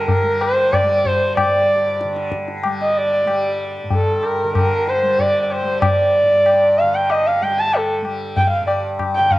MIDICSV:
0, 0, Header, 1, 4, 480
1, 0, Start_track
1, 0, Tempo, 636267
1, 1030, Time_signature, 7, 2, 24, 8
1, 7083, End_track
2, 0, Start_track
2, 0, Title_t, "Sarangi"
2, 0, Program_c, 0, 110
2, 69, Note_on_c, 0, 70, 87
2, 319, Note_on_c, 0, 72, 100
2, 330, Note_off_c, 0, 70, 0
2, 551, Note_on_c, 0, 74, 104
2, 562, Note_off_c, 0, 72, 0
2, 802, Note_on_c, 0, 72, 95
2, 813, Note_off_c, 0, 74, 0
2, 1036, Note_off_c, 0, 72, 0
2, 1042, Note_on_c, 0, 74, 99
2, 1729, Note_off_c, 0, 74, 0
2, 2125, Note_on_c, 0, 75, 80
2, 2243, Note_on_c, 0, 74, 96
2, 2254, Note_off_c, 0, 75, 0
2, 2841, Note_off_c, 0, 74, 0
2, 2965, Note_on_c, 0, 69, 74
2, 3207, Note_on_c, 0, 70, 80
2, 3218, Note_off_c, 0, 69, 0
2, 3438, Note_off_c, 0, 70, 0
2, 3443, Note_on_c, 0, 70, 86
2, 3688, Note_on_c, 0, 72, 86
2, 3699, Note_off_c, 0, 70, 0
2, 3923, Note_on_c, 0, 74, 95
2, 3934, Note_off_c, 0, 72, 0
2, 4094, Note_off_c, 0, 74, 0
2, 4094, Note_on_c, 0, 74, 63
2, 4167, Note_on_c, 0, 72, 86
2, 4178, Note_off_c, 0, 74, 0
2, 4396, Note_off_c, 0, 72, 0
2, 4400, Note_on_c, 0, 74, 102
2, 5119, Note_on_c, 0, 77, 93
2, 5130, Note_off_c, 0, 74, 0
2, 5241, Note_on_c, 0, 79, 89
2, 5252, Note_off_c, 0, 77, 0
2, 5359, Note_on_c, 0, 75, 96
2, 5371, Note_off_c, 0, 79, 0
2, 5484, Note_on_c, 0, 77, 90
2, 5495, Note_off_c, 0, 75, 0
2, 5602, Note_on_c, 0, 79, 94
2, 5613, Note_off_c, 0, 77, 0
2, 5727, Note_on_c, 0, 81, 95
2, 5738, Note_off_c, 0, 79, 0
2, 5847, Note_on_c, 0, 69, 75
2, 5859, Note_off_c, 0, 81, 0
2, 5959, Note_off_c, 0, 69, 0
2, 6312, Note_on_c, 0, 79, 93
2, 6406, Note_off_c, 0, 79, 0
2, 6410, Note_on_c, 0, 77, 78
2, 6530, Note_off_c, 0, 77, 0
2, 6539, Note_on_c, 0, 74, 69
2, 6654, Note_off_c, 0, 74, 0
2, 6903, Note_on_c, 0, 79, 99
2, 7021, Note_on_c, 0, 77, 88
2, 7032, Note_off_c, 0, 79, 0
2, 7083, Note_off_c, 0, 77, 0
2, 7083, End_track
3, 0, Start_track
3, 0, Title_t, "Tanpura"
3, 0, Program_c, 1, 104
3, 0, Note_on_c, 1, 43, 60
3, 0, Note_on_c, 1, 50, 61
3, 0, Note_on_c, 1, 55, 62
3, 174, Note_off_c, 1, 55, 0
3, 174, Note_on_c, 1, 55, 57
3, 627, Note_off_c, 1, 55, 0
3, 627, Note_on_c, 1, 55, 62
3, 1088, Note_off_c, 1, 43, 0
3, 1091, Note_on_c, 1, 43, 61
3, 1537, Note_off_c, 1, 50, 0
3, 1540, Note_on_c, 1, 50, 63
3, 1995, Note_off_c, 1, 55, 0
3, 1995, Note_on_c, 1, 55, 58
3, 2457, Note_off_c, 1, 55, 0
3, 2457, Note_on_c, 1, 55, 63
3, 2893, Note_off_c, 1, 43, 0
3, 2896, Note_on_c, 1, 43, 61
3, 3347, Note_off_c, 1, 50, 0
3, 3350, Note_on_c, 1, 50, 59
3, 3790, Note_off_c, 1, 55, 0
3, 3790, Note_on_c, 1, 55, 60
3, 4244, Note_off_c, 1, 55, 0
3, 4244, Note_on_c, 1, 55, 60
3, 4694, Note_off_c, 1, 43, 0
3, 4697, Note_on_c, 1, 43, 61
3, 5145, Note_off_c, 1, 50, 0
3, 5148, Note_on_c, 1, 50, 58
3, 5595, Note_off_c, 1, 55, 0
3, 5595, Note_on_c, 1, 55, 59
3, 6049, Note_off_c, 1, 55, 0
3, 6049, Note_on_c, 1, 55, 59
3, 6493, Note_off_c, 1, 43, 0
3, 6496, Note_on_c, 1, 43, 60
3, 6935, Note_off_c, 1, 50, 0
3, 6938, Note_on_c, 1, 50, 61
3, 7083, Note_off_c, 1, 43, 0
3, 7083, Note_off_c, 1, 50, 0
3, 7083, Note_off_c, 1, 55, 0
3, 7083, End_track
4, 0, Start_track
4, 0, Title_t, "Tabla"
4, 62, Note_on_c, 9, 63, 77
4, 62, Note_on_c, 9, 64, 73
4, 137, Note_off_c, 9, 63, 0
4, 137, Note_off_c, 9, 64, 0
4, 309, Note_on_c, 9, 60, 58
4, 385, Note_off_c, 9, 60, 0
4, 550, Note_on_c, 9, 60, 72
4, 550, Note_on_c, 9, 64, 64
4, 625, Note_off_c, 9, 60, 0
4, 625, Note_off_c, 9, 64, 0
4, 792, Note_on_c, 9, 64, 51
4, 867, Note_off_c, 9, 64, 0
4, 1034, Note_on_c, 9, 60, 103
4, 1034, Note_on_c, 9, 64, 90
4, 1109, Note_off_c, 9, 60, 0
4, 1109, Note_off_c, 9, 64, 0
4, 1514, Note_on_c, 9, 62, 80
4, 1589, Note_off_c, 9, 62, 0
4, 1632, Note_on_c, 9, 62, 61
4, 1707, Note_off_c, 9, 62, 0
4, 1748, Note_on_c, 9, 37, 58
4, 1824, Note_off_c, 9, 37, 0
4, 1872, Note_on_c, 9, 62, 60
4, 1947, Note_off_c, 9, 62, 0
4, 1988, Note_on_c, 9, 60, 79
4, 2064, Note_off_c, 9, 60, 0
4, 2471, Note_on_c, 9, 60, 72
4, 2547, Note_off_c, 9, 60, 0
4, 2947, Note_on_c, 9, 63, 73
4, 2947, Note_on_c, 9, 64, 69
4, 3022, Note_off_c, 9, 63, 0
4, 3022, Note_off_c, 9, 64, 0
4, 3191, Note_on_c, 9, 60, 56
4, 3266, Note_off_c, 9, 60, 0
4, 3435, Note_on_c, 9, 60, 73
4, 3435, Note_on_c, 9, 64, 71
4, 3511, Note_off_c, 9, 60, 0
4, 3511, Note_off_c, 9, 64, 0
4, 3678, Note_on_c, 9, 62, 59
4, 3754, Note_off_c, 9, 62, 0
4, 3915, Note_on_c, 9, 63, 73
4, 3915, Note_on_c, 9, 64, 64
4, 3990, Note_off_c, 9, 63, 0
4, 3990, Note_off_c, 9, 64, 0
4, 4151, Note_on_c, 9, 60, 58
4, 4227, Note_off_c, 9, 60, 0
4, 4392, Note_on_c, 9, 60, 104
4, 4392, Note_on_c, 9, 64, 91
4, 4467, Note_off_c, 9, 60, 0
4, 4467, Note_off_c, 9, 64, 0
4, 4872, Note_on_c, 9, 60, 79
4, 4947, Note_off_c, 9, 60, 0
4, 5354, Note_on_c, 9, 60, 78
4, 5430, Note_off_c, 9, 60, 0
4, 5832, Note_on_c, 9, 60, 76
4, 5908, Note_off_c, 9, 60, 0
4, 6071, Note_on_c, 9, 60, 57
4, 6147, Note_off_c, 9, 60, 0
4, 6311, Note_on_c, 9, 63, 76
4, 6311, Note_on_c, 9, 64, 69
4, 6387, Note_off_c, 9, 63, 0
4, 6387, Note_off_c, 9, 64, 0
4, 6546, Note_on_c, 9, 60, 57
4, 6621, Note_off_c, 9, 60, 0
4, 6785, Note_on_c, 9, 60, 79
4, 6785, Note_on_c, 9, 64, 70
4, 6860, Note_off_c, 9, 60, 0
4, 6860, Note_off_c, 9, 64, 0
4, 7021, Note_on_c, 9, 64, 51
4, 7083, Note_off_c, 9, 64, 0
4, 7083, End_track
0, 0, End_of_file